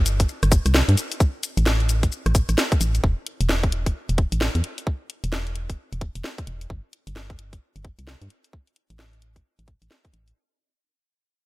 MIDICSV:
0, 0, Header, 1, 3, 480
1, 0, Start_track
1, 0, Tempo, 458015
1, 1261, Time_signature, 4, 2, 24, 8
1, 12003, End_track
2, 0, Start_track
2, 0, Title_t, "FM bass"
2, 0, Program_c, 0, 39
2, 0, Note_on_c, 0, 31, 93
2, 270, Note_off_c, 0, 31, 0
2, 449, Note_on_c, 0, 31, 81
2, 628, Note_off_c, 0, 31, 0
2, 688, Note_on_c, 0, 36, 80
2, 867, Note_off_c, 0, 36, 0
2, 928, Note_on_c, 0, 43, 83
2, 1002, Note_off_c, 0, 43, 0
2, 1649, Note_on_c, 0, 33, 91
2, 2190, Note_off_c, 0, 33, 0
2, 2368, Note_on_c, 0, 33, 83
2, 2547, Note_off_c, 0, 33, 0
2, 2609, Note_on_c, 0, 33, 84
2, 2682, Note_off_c, 0, 33, 0
2, 2942, Note_on_c, 0, 33, 99
2, 3143, Note_off_c, 0, 33, 0
2, 3182, Note_on_c, 0, 28, 95
2, 3299, Note_off_c, 0, 28, 0
2, 3569, Note_on_c, 0, 28, 89
2, 4111, Note_off_c, 0, 28, 0
2, 4289, Note_on_c, 0, 28, 80
2, 4468, Note_off_c, 0, 28, 0
2, 4529, Note_on_c, 0, 33, 79
2, 4708, Note_off_c, 0, 33, 0
2, 4769, Note_on_c, 0, 40, 83
2, 4842, Note_off_c, 0, 40, 0
2, 5489, Note_on_c, 0, 28, 91
2, 6031, Note_off_c, 0, 28, 0
2, 6210, Note_on_c, 0, 28, 83
2, 6388, Note_off_c, 0, 28, 0
2, 6450, Note_on_c, 0, 28, 84
2, 6522, Note_off_c, 0, 28, 0
2, 6782, Note_on_c, 0, 28, 98
2, 6983, Note_off_c, 0, 28, 0
2, 7023, Note_on_c, 0, 31, 98
2, 7139, Note_off_c, 0, 31, 0
2, 7410, Note_on_c, 0, 31, 87
2, 7951, Note_off_c, 0, 31, 0
2, 8130, Note_on_c, 0, 31, 80
2, 8308, Note_off_c, 0, 31, 0
2, 8370, Note_on_c, 0, 36, 81
2, 8548, Note_off_c, 0, 36, 0
2, 8610, Note_on_c, 0, 43, 83
2, 8683, Note_off_c, 0, 43, 0
2, 9330, Note_on_c, 0, 33, 91
2, 9871, Note_off_c, 0, 33, 0
2, 10049, Note_on_c, 0, 33, 82
2, 10228, Note_off_c, 0, 33, 0
2, 10289, Note_on_c, 0, 33, 81
2, 10362, Note_off_c, 0, 33, 0
2, 10621, Note_on_c, 0, 33, 96
2, 10823, Note_off_c, 0, 33, 0
2, 12003, End_track
3, 0, Start_track
3, 0, Title_t, "Drums"
3, 62, Note_on_c, 9, 42, 102
3, 62, Note_on_c, 9, 82, 72
3, 166, Note_off_c, 9, 42, 0
3, 166, Note_off_c, 9, 82, 0
3, 209, Note_on_c, 9, 36, 65
3, 209, Note_on_c, 9, 42, 62
3, 209, Note_on_c, 9, 82, 31
3, 302, Note_off_c, 9, 82, 0
3, 302, Note_on_c, 9, 82, 40
3, 313, Note_off_c, 9, 42, 0
3, 314, Note_off_c, 9, 36, 0
3, 407, Note_off_c, 9, 82, 0
3, 449, Note_on_c, 9, 37, 53
3, 449, Note_on_c, 9, 42, 49
3, 449, Note_on_c, 9, 82, 28
3, 541, Note_on_c, 9, 36, 111
3, 542, Note_off_c, 9, 42, 0
3, 542, Note_off_c, 9, 82, 0
3, 542, Note_on_c, 9, 42, 101
3, 542, Note_on_c, 9, 82, 72
3, 554, Note_off_c, 9, 37, 0
3, 646, Note_off_c, 9, 36, 0
3, 646, Note_off_c, 9, 42, 0
3, 646, Note_off_c, 9, 82, 0
3, 689, Note_on_c, 9, 37, 31
3, 689, Note_on_c, 9, 42, 60
3, 689, Note_on_c, 9, 82, 30
3, 781, Note_off_c, 9, 82, 0
3, 781, Note_on_c, 9, 38, 127
3, 781, Note_on_c, 9, 82, 43
3, 794, Note_off_c, 9, 37, 0
3, 794, Note_off_c, 9, 42, 0
3, 886, Note_off_c, 9, 38, 0
3, 886, Note_off_c, 9, 82, 0
3, 929, Note_on_c, 9, 42, 49
3, 1021, Note_off_c, 9, 42, 0
3, 1021, Note_on_c, 9, 42, 99
3, 1021, Note_on_c, 9, 82, 71
3, 1126, Note_off_c, 9, 42, 0
3, 1126, Note_off_c, 9, 82, 0
3, 1169, Note_on_c, 9, 42, 61
3, 1169, Note_on_c, 9, 82, 30
3, 1261, Note_off_c, 9, 82, 0
3, 1261, Note_on_c, 9, 36, 118
3, 1261, Note_on_c, 9, 82, 42
3, 1274, Note_off_c, 9, 42, 0
3, 1366, Note_off_c, 9, 36, 0
3, 1366, Note_off_c, 9, 82, 0
3, 1502, Note_on_c, 9, 42, 99
3, 1502, Note_on_c, 9, 82, 73
3, 1606, Note_off_c, 9, 42, 0
3, 1606, Note_off_c, 9, 82, 0
3, 1650, Note_on_c, 9, 42, 60
3, 1650, Note_on_c, 9, 82, 31
3, 1742, Note_off_c, 9, 82, 0
3, 1742, Note_on_c, 9, 38, 121
3, 1742, Note_on_c, 9, 82, 42
3, 1755, Note_off_c, 9, 42, 0
3, 1847, Note_off_c, 9, 38, 0
3, 1847, Note_off_c, 9, 82, 0
3, 1889, Note_on_c, 9, 42, 36
3, 1982, Note_off_c, 9, 42, 0
3, 1982, Note_on_c, 9, 42, 96
3, 1982, Note_on_c, 9, 82, 73
3, 2087, Note_off_c, 9, 42, 0
3, 2087, Note_off_c, 9, 82, 0
3, 2129, Note_on_c, 9, 36, 63
3, 2129, Note_on_c, 9, 42, 63
3, 2129, Note_on_c, 9, 82, 32
3, 2222, Note_off_c, 9, 82, 0
3, 2222, Note_on_c, 9, 82, 42
3, 2234, Note_off_c, 9, 36, 0
3, 2234, Note_off_c, 9, 42, 0
3, 2326, Note_off_c, 9, 82, 0
3, 2370, Note_on_c, 9, 37, 51
3, 2370, Note_on_c, 9, 42, 49
3, 2370, Note_on_c, 9, 82, 30
3, 2461, Note_off_c, 9, 42, 0
3, 2461, Note_off_c, 9, 82, 0
3, 2461, Note_on_c, 9, 36, 105
3, 2461, Note_on_c, 9, 42, 100
3, 2461, Note_on_c, 9, 82, 73
3, 2474, Note_off_c, 9, 37, 0
3, 2566, Note_off_c, 9, 36, 0
3, 2566, Note_off_c, 9, 42, 0
3, 2566, Note_off_c, 9, 82, 0
3, 2609, Note_on_c, 9, 37, 30
3, 2609, Note_on_c, 9, 42, 61
3, 2609, Note_on_c, 9, 82, 32
3, 2702, Note_off_c, 9, 82, 0
3, 2702, Note_on_c, 9, 38, 125
3, 2702, Note_on_c, 9, 82, 43
3, 2714, Note_off_c, 9, 37, 0
3, 2714, Note_off_c, 9, 42, 0
3, 2807, Note_off_c, 9, 38, 0
3, 2807, Note_off_c, 9, 82, 0
3, 2849, Note_on_c, 9, 36, 108
3, 2850, Note_on_c, 9, 42, 50
3, 2850, Note_on_c, 9, 82, 29
3, 2942, Note_off_c, 9, 42, 0
3, 2942, Note_off_c, 9, 82, 0
3, 2942, Note_on_c, 9, 42, 98
3, 2942, Note_on_c, 9, 82, 74
3, 2954, Note_off_c, 9, 36, 0
3, 3047, Note_off_c, 9, 42, 0
3, 3047, Note_off_c, 9, 82, 0
3, 3090, Note_on_c, 9, 42, 60
3, 3090, Note_on_c, 9, 82, 31
3, 3182, Note_on_c, 9, 36, 113
3, 3194, Note_off_c, 9, 42, 0
3, 3194, Note_off_c, 9, 82, 0
3, 3287, Note_off_c, 9, 36, 0
3, 3422, Note_on_c, 9, 42, 96
3, 3527, Note_off_c, 9, 42, 0
3, 3569, Note_on_c, 9, 42, 64
3, 3662, Note_on_c, 9, 38, 116
3, 3674, Note_off_c, 9, 42, 0
3, 3767, Note_off_c, 9, 38, 0
3, 3809, Note_on_c, 9, 36, 98
3, 3810, Note_on_c, 9, 42, 37
3, 3902, Note_off_c, 9, 42, 0
3, 3902, Note_on_c, 9, 42, 99
3, 3914, Note_off_c, 9, 36, 0
3, 4007, Note_off_c, 9, 42, 0
3, 4049, Note_on_c, 9, 36, 60
3, 4050, Note_on_c, 9, 42, 64
3, 4154, Note_off_c, 9, 36, 0
3, 4155, Note_off_c, 9, 42, 0
3, 4290, Note_on_c, 9, 42, 53
3, 4381, Note_on_c, 9, 36, 104
3, 4382, Note_off_c, 9, 42, 0
3, 4382, Note_on_c, 9, 42, 97
3, 4486, Note_off_c, 9, 36, 0
3, 4487, Note_off_c, 9, 42, 0
3, 4530, Note_on_c, 9, 42, 64
3, 4621, Note_on_c, 9, 38, 120
3, 4634, Note_off_c, 9, 42, 0
3, 4726, Note_off_c, 9, 38, 0
3, 4769, Note_on_c, 9, 42, 52
3, 4862, Note_off_c, 9, 42, 0
3, 4862, Note_on_c, 9, 42, 99
3, 4966, Note_off_c, 9, 42, 0
3, 5009, Note_on_c, 9, 42, 63
3, 5101, Note_on_c, 9, 36, 105
3, 5114, Note_off_c, 9, 42, 0
3, 5206, Note_off_c, 9, 36, 0
3, 5342, Note_on_c, 9, 42, 101
3, 5446, Note_off_c, 9, 42, 0
3, 5489, Note_on_c, 9, 42, 66
3, 5581, Note_on_c, 9, 38, 112
3, 5594, Note_off_c, 9, 42, 0
3, 5686, Note_off_c, 9, 38, 0
3, 5729, Note_on_c, 9, 42, 38
3, 5822, Note_off_c, 9, 42, 0
3, 5822, Note_on_c, 9, 42, 100
3, 5926, Note_off_c, 9, 42, 0
3, 5969, Note_on_c, 9, 36, 57
3, 5969, Note_on_c, 9, 42, 66
3, 6074, Note_off_c, 9, 36, 0
3, 6074, Note_off_c, 9, 42, 0
3, 6210, Note_on_c, 9, 42, 53
3, 6302, Note_off_c, 9, 42, 0
3, 6302, Note_on_c, 9, 36, 100
3, 6302, Note_on_c, 9, 42, 102
3, 6406, Note_off_c, 9, 36, 0
3, 6407, Note_off_c, 9, 42, 0
3, 6450, Note_on_c, 9, 42, 65
3, 6542, Note_on_c, 9, 38, 112
3, 6554, Note_off_c, 9, 42, 0
3, 6647, Note_off_c, 9, 38, 0
3, 6690, Note_on_c, 9, 36, 98
3, 6690, Note_on_c, 9, 42, 53
3, 6782, Note_off_c, 9, 42, 0
3, 6782, Note_on_c, 9, 42, 102
3, 6795, Note_off_c, 9, 36, 0
3, 6887, Note_off_c, 9, 42, 0
3, 6931, Note_on_c, 9, 42, 65
3, 7022, Note_on_c, 9, 36, 105
3, 7035, Note_off_c, 9, 42, 0
3, 7127, Note_off_c, 9, 36, 0
3, 7263, Note_on_c, 9, 42, 102
3, 7368, Note_off_c, 9, 42, 0
3, 7410, Note_on_c, 9, 42, 67
3, 7503, Note_on_c, 9, 38, 108
3, 7515, Note_off_c, 9, 42, 0
3, 7608, Note_off_c, 9, 38, 0
3, 7650, Note_on_c, 9, 36, 96
3, 7651, Note_on_c, 9, 42, 38
3, 7743, Note_off_c, 9, 42, 0
3, 7743, Note_on_c, 9, 42, 104
3, 7755, Note_off_c, 9, 36, 0
3, 7847, Note_off_c, 9, 42, 0
3, 7890, Note_on_c, 9, 36, 57
3, 7891, Note_on_c, 9, 42, 67
3, 7995, Note_off_c, 9, 36, 0
3, 7996, Note_off_c, 9, 42, 0
3, 8130, Note_on_c, 9, 42, 54
3, 8222, Note_on_c, 9, 36, 97
3, 8223, Note_off_c, 9, 42, 0
3, 8223, Note_on_c, 9, 42, 106
3, 8327, Note_off_c, 9, 36, 0
3, 8327, Note_off_c, 9, 42, 0
3, 8371, Note_on_c, 9, 42, 67
3, 8463, Note_on_c, 9, 38, 111
3, 8475, Note_off_c, 9, 42, 0
3, 8567, Note_off_c, 9, 38, 0
3, 8610, Note_on_c, 9, 42, 53
3, 8702, Note_off_c, 9, 42, 0
3, 8702, Note_on_c, 9, 42, 105
3, 8807, Note_off_c, 9, 42, 0
3, 8849, Note_on_c, 9, 42, 65
3, 8942, Note_on_c, 9, 36, 108
3, 8954, Note_off_c, 9, 42, 0
3, 9047, Note_off_c, 9, 36, 0
3, 9090, Note_on_c, 9, 42, 36
3, 9182, Note_off_c, 9, 42, 0
3, 9182, Note_on_c, 9, 42, 105
3, 9286, Note_off_c, 9, 42, 0
3, 9330, Note_on_c, 9, 42, 65
3, 9422, Note_on_c, 9, 38, 113
3, 9434, Note_off_c, 9, 42, 0
3, 9526, Note_off_c, 9, 38, 0
3, 9571, Note_on_c, 9, 42, 38
3, 9663, Note_off_c, 9, 42, 0
3, 9663, Note_on_c, 9, 42, 109
3, 9768, Note_off_c, 9, 42, 0
3, 9809, Note_on_c, 9, 36, 57
3, 9811, Note_on_c, 9, 42, 65
3, 9914, Note_off_c, 9, 36, 0
3, 9915, Note_off_c, 9, 42, 0
3, 10051, Note_on_c, 9, 42, 53
3, 10142, Note_off_c, 9, 42, 0
3, 10142, Note_on_c, 9, 36, 99
3, 10142, Note_on_c, 9, 42, 105
3, 10246, Note_off_c, 9, 36, 0
3, 10247, Note_off_c, 9, 42, 0
3, 10290, Note_on_c, 9, 42, 65
3, 10383, Note_on_c, 9, 38, 113
3, 10395, Note_off_c, 9, 42, 0
3, 10488, Note_off_c, 9, 38, 0
3, 10529, Note_on_c, 9, 36, 98
3, 10531, Note_on_c, 9, 42, 52
3, 10622, Note_off_c, 9, 42, 0
3, 10622, Note_on_c, 9, 42, 105
3, 10634, Note_off_c, 9, 36, 0
3, 10727, Note_off_c, 9, 42, 0
3, 10770, Note_on_c, 9, 42, 63
3, 10875, Note_off_c, 9, 42, 0
3, 12003, End_track
0, 0, End_of_file